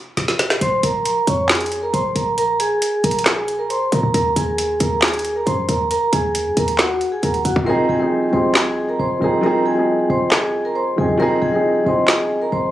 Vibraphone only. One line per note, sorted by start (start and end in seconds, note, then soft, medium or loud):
0.62 0.79 C5 loud
0.62 0.79 C6 medium
0.84 1.25 A#4 medium
0.84 1.26 A#5 medium
1.28 1.45 C#5 medium
1.28 1.46 C#6 medium
1.50 1.81 G#4 medium
1.50 1.81 G#5 medium
1.82 1.91 A#4 medium
1.82 1.91 A#5 medium
1.93 2.11 C5 medium
1.93 2.11 C6 medium
2.15 2.33 A#4 medium
2.15 2.33 A#5 medium
2.38 2.55 A#4 loud
2.38 2.56 A#5 medium
2.60 3.01 G#4 medium
2.60 3.02 G#5 medium
3.04 3.21 A#4 medium
3.04 3.22 A#5 medium
3.26 3.57 G#4 medium
3.26 3.57 G#5 medium
3.59 3.68 A#4 medium
3.59 3.68 A#5 medium
3.70 3.87 C5 medium
3.70 3.88 C6 medium
3.92 4.10 A#4 medium
3.92 4.10 A#5 medium
4.14 4.32 A#4 loud
4.14 4.32 A#5 medium
4.36 4.78 G#4 medium
4.36 4.78 G#5 medium
4.81 4.98 A#4 medium
4.81 4.98 A#5 medium
5.03 5.34 G#4 medium
5.03 5.34 G#5 medium
5.36 5.44 A#4 medium
5.36 5.45 A#5 medium
5.46 5.64 C5 medium
5.46 5.64 C6 medium
5.69 5.86 A#4 medium
5.69 5.87 A#5 medium
5.91 6.08 A#4 loud
5.91 6.09 A#5 medium
6.13 6.54 G#4 medium
6.13 6.55 G#5 medium
6.58 6.75 A#4 medium
6.58 6.75 A#5 medium
6.79 7.10 F#4 medium
6.79 7.11 F#5 medium
7.12 7.21 G#4 medium
7.12 7.21 G#5 medium
7.23 7.41 A#4 medium
7.23 7.41 A#5 medium
7.45 7.63 F#4 medium
7.45 7.63 F#5 medium
7.67 7.84 A#4 loud
7.67 7.85 A#5 medium
7.89 8.31 G#4 medium
7.89 8.31 G#5 medium
8.33 8.51 C5 medium
8.33 8.51 C6 medium
8.56 8.87 G#4 medium
8.56 8.87 G#5 medium
8.89 8.97 A#4 medium
8.89 8.98 A#5 medium
9.00 9.17 C5 medium
9.00 9.18 C6 medium
9.22 9.39 A#4 medium
9.22 9.40 A#5 medium
9.44 9.61 A#4 loud
9.44 9.61 A#5 medium
9.66 10.07 G#4 medium
9.66 10.08 G#5 medium
10.10 10.27 C5 medium
10.10 10.28 C6 medium
10.31 10.63 G#4 medium
10.31 10.63 G#5 medium
10.65 10.74 A#4 medium
10.65 10.74 A#5 medium
10.76 10.93 C5 medium
10.76 10.94 C6 medium
10.98 11.16 G#4 medium
10.98 11.16 G#5 medium
11.20 11.37 A#4 loud
11.20 11.38 A#5 medium
11.42 11.83 G#4 medium
11.42 11.84 G#5 medium
11.87 12.04 C5 medium
11.87 12.04 C6 medium
12.08 12.39 G#4 medium
12.08 12.40 G#5 medium
12.42 12.50 A#4 medium
12.42 12.51 A#5 medium
12.52 12.70 C5 medium
12.52 12.70 C6 medium